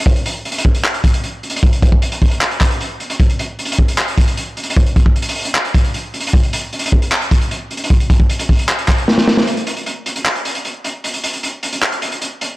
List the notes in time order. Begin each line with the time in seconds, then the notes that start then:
0.06 kick
0.16 closed hi-hat
0.26 closed hi-hat
0.45 closed hi-hat
0.52 closed hi-hat
0.58 closed hi-hat
0.65 kick
0.75 closed hi-hat
0.84 clap, closed hi-hat
0.94 closed hi-hat
1.04 kick, closed hi-hat
1.14 closed hi-hat
1.24 closed hi-hat
1.43 closed hi-hat
1.50 closed hi-hat
1.56 closed hi-hat
1.63 kick, closed hi-hat
1.73 closed hi-hat
1.82 kick, closed hi-hat
1.92 kick
2.02 closed hi-hat
2.12 closed hi-hat
2.22 kick, open hi-hat
2.31 closed hi-hat
2.41 clap, closed hi-hat
2.51 closed hi-hat
2.61 kick, clap, closed hi-hat
2.71 closed hi-hat
2.80 closed hi-hat
3.00 closed hi-hat
3.10 closed hi-hat
3.20 kick, closed hi-hat
3.29 closed hi-hat
3.39 closed hi-hat
3.59 closed hi-hat
3.65 closed hi-hat
3.72 closed hi-hat
3.79 kick
3.88 closed hi-hat
3.98 clap, closed hi-hat
4.08 closed hi-hat
4.18 kick, closed hi-hat
4.27 closed hi-hat
4.37 closed hi-hat
4.57 closed hi-hat
4.63 closed hi-hat
4.70 closed hi-hat
4.76 kick, closed hi-hat
4.86 closed hi-hat
4.96 kick, closed hi-hat
5.06 kick
5.16 closed hi-hat
5.22 closed hi-hat
5.29 closed hi-hat
5.35 open hi-hat
5.45 closed hi-hat
5.55 clap, closed hi-hat
5.65 closed hi-hat
5.75 kick, closed hi-hat
5.84 closed hi-hat
5.94 closed hi-hat
6.14 closed hi-hat
6.20 closed hi-hat
6.27 closed hi-hat
6.33 kick, closed hi-hat
6.43 closed hi-hat
6.53 closed hi-hat
6.73 closed hi-hat
6.79 closed hi-hat
6.86 closed hi-hat
6.92 kick
7.02 closed hi-hat
7.12 clap, closed hi-hat
7.22 closed hi-hat
7.31 kick, closed hi-hat
7.41 closed hi-hat
7.51 closed hi-hat
7.71 closed hi-hat
7.77 closed hi-hat
7.84 closed hi-hat
7.90 kick, closed hi-hat
8.00 closed hi-hat
8.10 kick, closed hi-hat
8.20 kick
8.30 closed hi-hat
8.39 closed hi-hat
8.49 kick, open hi-hat
8.59 closed hi-hat
8.69 clap, closed hi-hat
8.78 closed hi-hat
8.88 kick, clap, closed hi-hat
8.98 closed hi-hat
9.08 snare
9.18 snare
9.28 snare
9.37 snare
9.47 closed hi-hat
9.57 closed hi-hat
9.67 closed hi-hat
9.77 closed hi-hat
9.86 closed hi-hat
10.06 closed hi-hat
10.16 closed hi-hat
10.26 clap, closed hi-hat
10.35 closed hi-hat
10.45 closed hi-hat
10.55 closed hi-hat
10.65 closed hi-hat
10.84 closed hi-hat
11.04 closed hi-hat
11.14 closed hi-hat
11.24 closed hi-hat
11.33 closed hi-hat
11.43 closed hi-hat
11.63 closed hi-hat
11.73 closed hi-hat
11.82 clap, closed hi-hat
11.92 closed hi-hat
12.02 closed hi-hat
12.12 closed hi-hat
12.22 closed hi-hat
12.41 closed hi-hat